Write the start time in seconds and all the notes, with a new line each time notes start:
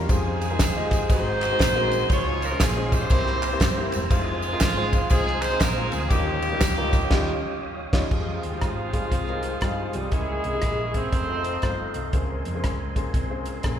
Already playing: F5
0.09 F2 G#3 C4 D#4 F4 G4 G#4 C5 G5 D#6, kick, ride, tambourine
0.41 ride, tambourine
0.51 G#3 D#4 F4 G4 A#4
0.59 D#2, kick, snare, clap, ride, tambourine
0.76 G#3 D#4 F4 G4 D#5
0.90 kick, snare, ride, tambourine
1.09 G#1 G#2 G#3 C4 D#4 F#4 C5 F#5 G#5, kick, ride, tambourine
1.41 clap, ride, tambourine
1.51 G#3 C4 D#4 F#4 C5
1.59 A#1, kick, snare, clap, ride, tambourine
1.76 G#3 C4 D#4 F#4 A#4
1.91 ride, tambourine
2.10 C#2 C#3 G#3 C#4 D#4 F4 G#4 C5 C#5 F5 C6, kick, ride, tambourine
2.42 A#4, ride, tambourine
2.51 G#3 C#4 D#4 F4 C5
2.60 A#1 G#4, kick, snare, clap, ride, tambourine
2.76 G#3 C#4 D#4 F4 C5
2.92 E4 G4 C5, kick, ride, tambourine
3.10 C2 C3 A#3 C4 E4 G4 C5 G5 A#5 E6, kick, ride, tambourine
3.26 snare
3.42 clap, ride, tambourine
3.52 A#3 C4 E4 G4 C5
3.60 G2, kick, snare, clap, ride, tambourine
3.77 A#3 C4 E4 G4 C5
3.92 E1, ride, tambourine
4.10 F1 G#3 C4 D#4 F4 C5 F5 G#5 D#6, kick, ride, tambourine
4.42 ride, tambourine
4.52 G#3 C4 D#4 F4 A#4
4.61 G#1, kick, snare, clap, ride, tambourine
4.77 G#3 C4 D#4 F4 C5
4.93 kick, ride, tambourine
5.09 C2 G#3 C4 D#4 F4 G#4 C5, kick, ride, tambourine
5.27 snare
5.41 C5, clap, ride, tambourine
5.52 G#3 C4 D#4 F4 C5
5.59 A#1 A#4, kick, snare, clap, ride, tambourine
5.77 G#3 C4 D#4 F4 C5
5.91 D2 G#4, ride, tambourine
6.09 D#2 D#3 G3 A#3 C#4 D#4 F4 G4 A#4 C#5 G5, kick, ride, tambourine
6.42 ride, tambourine
6.52 G3 C#4 D#4 F4 A#4
6.61 C#2, kick, snare, clap, ride, tambourine
6.78 G3 C#4 D#4 F4 A#4
6.92 kick, snare, ride, tambourine
7.11 D#2 G3 C#4 D#4 F4 G4, kick, snare, crash
7.93 D#2 G3 C#4 D#4 F4 C#5, kick, snare, crash
8.11 F2 D#3 F3 G3 G#3 C4 D#4 F4 G#4 F5 G5 D#6, kick, crash
8.43 D#2, closed hi-hat
8.52 G3 D#4 F4 G4
8.61 G#1, kick, cross-stick, closed hi-hat
8.93 G3 D#4 F4 G#4, kick, cross-stick, closed hi-hat
9.12 C2, kick, closed hi-hat
9.27 G3 D#4 F4 A#4, cross-stick
9.43 closed hi-hat
9.61 G2 G3 D#4 F4 G#4, kick, cross-stick, closed hi-hat
9.93 C2 G3, closed hi-hat
10.11 C#2 C#3 E3 G#3 A#3 C#4 E4 G#4 A#4 E5 G#5 C#6, kick, closed hi-hat
10.44 C2, closed hi-hat
10.54 G#3 C#4 E4 G4
10.62 A#1, kick, cross-stick, closed hi-hat
10.94 G#3 C4 C#4 E4 A#4, kick, closed hi-hat
11.12 F1 D#3 F3 A3 C4 D#4 A4 C5 D#5 F5 C6, kick, closed hi-hat
11.29 A3 D#4 F4 C5
11.44 closed hi-hat
11.62 G1 A3 D#4 F4 C5, kick, cross-stick, closed hi-hat
11.94 C2, closed hi-hat
12.13 C#2 A#2 C#3 G#3 A#3 C4 C#4 G#4 A#4 C5 G#5, kick, closed hi-hat
12.45 F2, closed hi-hat
12.55 A#3 C#4 G#4 C5
12.64 C#2, kick, cross-stick, closed hi-hat
12.96 A#3 C#4 G#4 C5, kick, closed hi-hat
13.14 C2, kick, closed hi-hat
13.30 A#3 C#4 G#4 C5
13.46 closed hi-hat
13.63 A#1 A#3 C#4 G#4 A#4, kick, cross-stick, closed hi-hat